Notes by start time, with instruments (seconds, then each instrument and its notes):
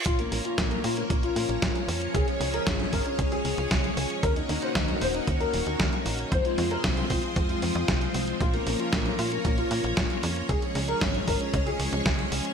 0.06 analog synth bass A#1, string machine F3 A#3 C#4 A#4 C#5, grand piano F4, kick, closed hi-hat
0.19 grand piano A#3, closed hi-hat
0.32 analog synth bass A#1, grand piano A#3, open hi-hat
0.45 grand piano F4, closed hi-hat
0.58 analog synth bass A#1, grand piano A#3, kick, snare, closed hi-hat
0.71 grand piano A#3, closed hi-hat
0.84 analog synth bass A#2, grand piano F4, open hi-hat
0.97 grand piano A#3, closed hi-hat
1.10 analog synth bass A#1, grand piano A#3, kick, closed hi-hat
1.23 grand piano F4, closed hi-hat
1.36 analog synth bass A#2, open hi-hat
1.49 analog synth bass A#1, closed hi-hat
1.62 analog synth bass A#1, kick, snare, closed hi-hat
1.75 closed hi-hat
1.88 analog synth bass F2, open hi-hat
2.02 closed hi-hat
2.14 analog synth bass C#2, string machine G#3 G#4, grand piano G#4, kick, closed hi-hat
2.28 grand piano C#4, closed hi-hat
2.40 analog synth bass C#2, grand piano C#4, open hi-hat
2.54 grand piano A#4, closed hi-hat
2.67 analog synth bass G#1, grand piano C#4, kick, snare, closed hi-hat
2.80 grand piano C#4, closed hi-hat
2.93 analog synth bass G#1, grand piano A#4, kick, open hi-hat
3.06 grand piano C#4, closed hi-hat
3.19 analog synth bass C#2, grand piano C#4, kick, closed hi-hat
3.32 grand piano G#4, closed hi-hat
3.45 analog synth bass C#2, open hi-hat
3.58 analog synth bass C#2, closed hi-hat
3.71 analog synth bass C#2, kick, snare, closed hi-hat
3.84 closed hi-hat
3.97 analog synth bass C#2, open hi-hat
4.10 closed hi-hat
4.23 analog synth bass D#2, string machine A#3 D#4 F#4, grand piano A#4, kick, closed hi-hat
4.36 grand piano D#4, closed hi-hat
4.49 analog synth bass D#2, grand piano D#4, open hi-hat
4.62 grand piano C5, closed hi-hat
4.75 analog synth bass D#2, grand piano D#4, kick, snare, closed hi-hat
4.88 grand piano D#4, closed hi-hat
5.01 analog synth bass D#1, grand piano C5, open hi-hat
5.14 grand piano D#4, closed hi-hat
5.27 analog synth bass D#2, grand piano D#4, kick, closed hi-hat
5.40 grand piano A#4, closed hi-hat
5.54 analog synth bass D#1, open hi-hat
5.67 analog synth bass D#2, closed hi-hat
5.80 analog synth bass D#2, kick, snare, closed hi-hat
5.93 closed hi-hat
6.06 analog synth bass A#1, open hi-hat
6.19 closed hi-hat
6.32 analog synth bass F2, string machine F3 G#3 C4 G#4 C5, grand piano C5, kick, closed hi-hat
6.45 grand piano F4, closed hi-hat
6.58 analog synth bass F2, grand piano F4, open hi-hat
6.71 grand piano A#4, closed hi-hat
6.84 analog synth bass C2, grand piano F4, kick, snare, closed hi-hat
6.97 grand piano F4, closed hi-hat
7.10 analog synth bass C2, grand piano F4, kick, open hi-hat
7.23 grand piano F4, closed hi-hat
7.36 analog synth bass F2, grand piano F4, kick, closed hi-hat
7.49 grand piano F4, closed hi-hat
7.62 analog synth bass F2, open hi-hat
7.75 analog synth bass F2, closed hi-hat
7.88 analog synth bass C2, kick, snare, closed hi-hat
8.01 closed hi-hat
8.14 analog synth bass C2, open hi-hat
8.28 closed hi-hat
8.40 analog synth bass A#1, string machine A#3 C#4 A#4 C#5, grand piano F4, kick, closed hi-hat
8.54 grand piano A#3, closed hi-hat
8.67 analog synth bass A#1, grand piano A#3, open hi-hat
8.79 grand piano F4, closed hi-hat
8.93 analog synth bass A#1, grand piano A#3, kick, snare, closed hi-hat
9.06 grand piano A#3, closed hi-hat
9.19 analog synth bass A#2, grand piano F4, open hi-hat
9.32 grand piano A#3, closed hi-hat
9.45 analog synth bass A#1, grand piano A#3, kick, closed hi-hat
9.58 grand piano F4, closed hi-hat
9.71 analog synth bass A#2, open hi-hat
9.84 analog synth bass A#1, closed hi-hat
9.97 analog synth bass A#1, kick, snare, closed hi-hat
10.10 closed hi-hat
10.23 analog synth bass F2, open hi-hat
10.36 closed hi-hat
10.49 analog synth bass C#2, string machine F3 G#3 G#4, grand piano G#4, kick, closed hi-hat
10.62 grand piano C#4, closed hi-hat
10.75 analog synth bass C#2, grand piano C#4, open hi-hat
10.88 grand piano A#4, closed hi-hat
11.01 analog synth bass G#1, grand piano C#4, kick, snare, closed hi-hat
11.14 grand piano C#4, closed hi-hat
11.27 analog synth bass G#1, grand piano A#4, kick, open hi-hat
11.40 grand piano C#4, closed hi-hat
11.53 analog synth bass C#2, grand piano C#4, kick, closed hi-hat
11.66 grand piano G#4, closed hi-hat
11.79 analog synth bass C#2, open hi-hat
11.93 analog synth bass C#2, closed hi-hat
12.06 analog synth bass C#2, kick, snare, closed hi-hat
12.19 closed hi-hat
12.32 analog synth bass C#2, open hi-hat
12.45 closed hi-hat